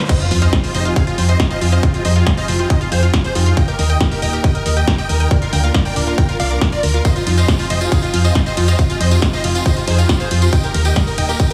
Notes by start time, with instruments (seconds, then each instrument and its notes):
0.09 analog synth pad F3 C4 D#4 G4 G#4, synth pluck D#4, supersaw synth C5 D#5, digital synth lead D#5, kick, closed hi-hat, crash, sub drop
0.20 synth pluck F4, supersaw synth F4, digital synth lead F4, closed hi-hat
0.31 fm bass F2, digital synth lead F4, supersaw synth F4, synth pluck F5, open hi-hat
0.42 synth pluck F4, supersaw synth C5 D#5, digital synth lead D#5, closed hi-hat
0.53 supersaw synth F4, digital synth lead F4, synth pluck C5, kick, snare, closed hi-hat
0.64 digital synth lead F4, supersaw synth F4, synth pluck C5, open hi-hat
0.74 fm bass F1, synth pluck D#4, supersaw synth C5 D#5, digital synth lead D#5, open hi-hat
0.85 synth pluck F4, digital synth lead F4, supersaw synth F4, closed hi-hat
0.96 supersaw synth G#4 F5, digital synth lead F5, synth pluck F5, kick, closed hi-hat
1.07 digital synth lead F4, synth pluck F4, supersaw synth F4, closed hi-hat
1.18 fm bass F2, digital synth lead F4, supersaw synth F4, synth pluck C5, open hi-hat
1.29 synth pluck C5, supersaw synth C5 D#5, digital synth lead D#5, closed hi-hat
1.40 synth pluck D#4, digital synth lead F4, supersaw synth F4, kick, snare, closed hi-hat
1.50 synth pluck F4, supersaw synth C5 D#5, digital synth lead D#5, closed hi-hat
1.61 fm bass F2, digital synth lead F4, supersaw synth F4, synth pluck F5, open hi-hat
1.72 synth pluck F4, supersaw synth C5 D#5, digital synth lead D#5, closed hi-hat
1.83 digital synth lead F4, supersaw synth F4, synth pluck C5, kick, closed hi-hat
1.94 supersaw synth F4, digital synth lead F4, synth pluck C5, closed hi-hat
2.05 fm bass F2, synth pluck D#4, supersaw synth C5 D#5, digital synth lead D#5, open hi-hat
2.16 supersaw synth F4, synth pluck F4, digital synth lead F4, closed hi-hat
2.27 supersaw synth F4, digital synth lead F4, synth pluck F5, kick, snare, closed hi-hat
2.37 synth pluck F4, supersaw synth C5 D#5, digital synth lead D#5, open hi-hat
2.48 fm bass F1, supersaw synth F4, digital synth lead F4, synth pluck C5, open hi-hat
2.59 supersaw synth F4, digital synth lead F4, synth pluck C5, closed hi-hat
2.70 synth pluck D#4, supersaw synth C5 D#5, digital synth lead D#5, kick, closed hi-hat
2.81 supersaw synth F4, synth pluck F4, digital synth lead F4, closed hi-hat
2.92 fm bass F2, supersaw synth G#4 C5, digital synth lead C5, synth pluck F5, open hi-hat
3.03 supersaw synth F4, synth pluck F4, digital synth lead F4, closed hi-hat
3.13 supersaw synth F4, digital synth lead F4, synth pluck C5, kick, snare, closed hi-hat
3.24 supersaw synth G#4 C5, synth pluck C5, digital synth lead C5, closed hi-hat
3.35 fm bass F2, synth pluck D#4, supersaw synth F4, digital synth lead F4, open hi-hat
3.46 supersaw synth F4, synth pluck F4, digital synth lead F4, closed hi-hat
3.57 analog synth pad A#3 D#4, supersaw synth D#5 G5, digital synth lead G5, synth pluck A#5, kick, closed hi-hat
3.68 synth pluck G4, supersaw synth A#4, digital synth lead A#4, closed hi-hat
3.79 fm bass D#2, supersaw synth A#4, digital synth lead A#4, synth pluck D#5, open hi-hat
3.90 supersaw synth D#5 G5, synth pluck D#5, digital synth lead G5, closed hi-hat
4.00 synth pluck D#4, supersaw synth A#4, digital synth lead A#4, kick, snare, closed hi-hat
4.11 synth pluck G4, supersaw synth A#4, digital synth lead A#4, open hi-hat
4.22 fm bass D#1, supersaw synth D#5 G5, digital synth lead G5, synth pluck A#5, open hi-hat
4.33 synth pluck G4, supersaw synth A#4, digital synth lead A#4, closed hi-hat
4.44 supersaw synth D#5 G5, synth pluck D#5, digital synth lead G5, kick, closed hi-hat
4.55 supersaw synth A#4, digital synth lead A#4, synth pluck D#5, closed hi-hat
4.66 fm bass D#2, synth pluck D#4, supersaw synth A#4, digital synth lead A#4, open hi-hat
4.77 synth pluck G4, supersaw synth D#5 G5, digital synth lead G5, closed hi-hat
4.87 supersaw synth A#4, digital synth lead A#4, synth pluck A#5, kick, snare, closed hi-hat
4.98 synth pluck G4, supersaw synth D#5 G5, digital synth lead G5, closed hi-hat
5.09 fm bass D#2, supersaw synth A#4, digital synth lead A#4, synth pluck D#5, open hi-hat
5.20 supersaw synth A#4 G5, synth pluck D#5, digital synth lead G5, closed hi-hat
5.31 analog synth pad A#3 D4 F4, synth pluck D4, supersaw synth A#4, digital synth lead A#4, kick, closed hi-hat
5.42 synth pluck F4, supersaw synth A#4, digital synth lead A#4, closed hi-hat
5.53 fm bass D2, supersaw synth A#4 G5, digital synth lead G5, synth pluck A#5, open hi-hat
5.64 synth pluck F4, supersaw synth A#4, digital synth lead A#4, closed hi-hat
5.74 supersaw synth A#4, digital synth lead A#4, synth pluck D5, kick, snare, closed hi-hat
5.85 supersaw synth A#4 G5, synth pluck D5, digital synth lead G5, open hi-hat
5.96 fm bass D1, synth pluck D4, digital synth lead A#4, supersaw synth A#4, open hi-hat
6.07 synth pluck F4, digital synth lead A#4, supersaw synth A#4, closed hi-hat
6.18 supersaw synth A#4 G5, digital synth lead G5, synth pluck A#5, kick, closed hi-hat
6.29 synth pluck F4, digital synth lead A#4, supersaw synth A#4, closed hi-hat
6.40 fm bass C2, synth pluck D5, supersaw synth D5 F5, digital synth lead F5, open hi-hat
6.50 supersaw synth A#4, digital synth lead A#4, synth pluck D5, closed hi-hat
6.61 synth pluck D4, supersaw synth A#4, digital synth lead A#4, kick, snare, closed hi-hat
6.72 synth pluck F4, supersaw synth A#4 D5, digital synth lead D5, closed hi-hat
6.83 fm bass D2, digital synth lead A#4, supersaw synth A#4, synth pluck A#5, open hi-hat
6.94 synth pluck F4, digital synth lead A#4, supersaw synth A#4, closed hi-hat
7.05 analog synth pad F3 C4 D#4 G4 G#4, synth pluck C5, supersaw synth C5 D#5, digital synth lead D#5, kick, closed hi-hat, tambourine
7.16 digital synth lead F4, supersaw synth F4, synth pluck C5, closed hi-hat, tambourine
7.26 fm bass F2, synth pluck D#4, digital synth lead F4, supersaw synth F4, open hi-hat, ride
7.37 synth pluck F4, supersaw synth C5 D#5, digital synth lead D#5, closed hi-hat, tambourine
7.48 digital synth lead F4, supersaw synth F4, synth pluck F5, kick, snare, closed hi-hat
7.58 digital synth lead F4, synth pluck F4, supersaw synth F4, open hi-hat, tambourine
7.70 fm bass F1, synth pluck C5, supersaw synth C5 D#5, digital synth lead D#5, open hi-hat, ride
7.81 digital synth lead F4, supersaw synth F4, synth pluck C5, closed hi-hat, tambourine
7.92 synth pluck D#4, supersaw synth G#4 F5, digital synth lead F5, kick, closed hi-hat, tambourine
8.02 digital synth lead F4, supersaw synth F4, synth pluck F4, closed hi-hat, tambourine
8.13 fm bass F2, digital synth lead F4, supersaw synth F4, synth pluck F5, open hi-hat, ride
8.24 synth pluck F4, supersaw synth C5 D#5, digital synth lead D#5, closed hi-hat, tambourine
8.35 digital synth lead F4, supersaw synth F4, synth pluck C5, kick, snare, closed hi-hat
8.46 synth pluck C5, supersaw synth C5 D#5, digital synth lead D#5, closed hi-hat, tambourine
8.57 fm bass F2, synth pluck D#4, digital synth lead F4, supersaw synth F4, open hi-hat, ride
8.68 synth pluck F4, supersaw synth C5 D#5, digital synth lead D#5, closed hi-hat, tambourine
8.79 supersaw synth F4, digital synth lead F4, synth pluck F5, kick, closed hi-hat, tambourine
8.90 supersaw synth F4, synth pluck F4, digital synth lead F4, closed hi-hat, tambourine
9.00 fm bass F2, supersaw synth C5 D#5, synth pluck C5, digital synth lead D#5, open hi-hat, ride
9.11 supersaw synth F4, digital synth lead F4, synth pluck C5, closed hi-hat, tambourine
9.22 synth pluck D#4, supersaw synth F4, kick, snare, closed hi-hat
9.33 synth pluck F4, supersaw synth C5 D#5, digital synth lead D#5, open hi-hat, tambourine
9.44 fm bass F1, supersaw synth F4, digital synth lead F4, synth pluck F5, open hi-hat, ride
9.55 supersaw synth F4, synth pluck F4, digital synth lead F4, closed hi-hat, tambourine
9.66 supersaw synth C5 D#5, synth pluck C5, digital synth lead D#5, kick, closed hi-hat, tambourine
9.77 supersaw synth F4, digital synth lead F4, synth pluck C5, closed hi-hat, tambourine
9.87 fm bass F2, synth pluck D#4, supersaw synth G#4 C5, digital synth lead C5, open hi-hat, ride
9.98 synth pluck F4, supersaw synth F4, digital synth lead F4, closed hi-hat, tambourine
10.09 supersaw synth F4, digital synth lead F4, synth pluck F5, kick, snare, closed hi-hat, tambourine
10.20 synth pluck F4, supersaw synth G#4 C5, digital synth lead C5, closed hi-hat, tambourine
10.31 fm bass F2, digital synth lead F4, supersaw synth F4, synth pluck C5, open hi-hat, ride
10.42 supersaw synth F4, digital synth lead F4, synth pluck C5, tambourine
10.53 analog synth pad A#3, synth pluck D#4, supersaw synth D#5 G5, digital synth lead G5, kick, closed hi-hat
10.64 synth pluck G4, supersaw synth A#4, digital synth lead A#4, closed hi-hat, tambourine
10.74 fm bass D#2, digital synth lead A#4, supersaw synth A#4, synth pluck A#5, open hi-hat, ride
10.85 synth pluck G4, supersaw synth D#5 G5, digital synth lead G5, closed hi-hat, tambourine
10.96 digital synth lead A#4, supersaw synth A#4, synth pluck D#5, kick, snare, closed hi-hat, tambourine
11.07 digital synth lead A#4, supersaw synth A#4, synth pluck D#5, open hi-hat, tambourine
11.18 fm bass D#1, synth pluck D#4, supersaw synth D#5 G5, digital synth lead G5, open hi-hat, ride
11.29 synth pluck G4, supersaw synth A#4, digital synth lead A#4, closed hi-hat, tambourine
11.39 supersaw synth D#5 G5, digital synth lead G5, synth pluck A#5, kick, closed hi-hat, tambourine
11.50 tambourine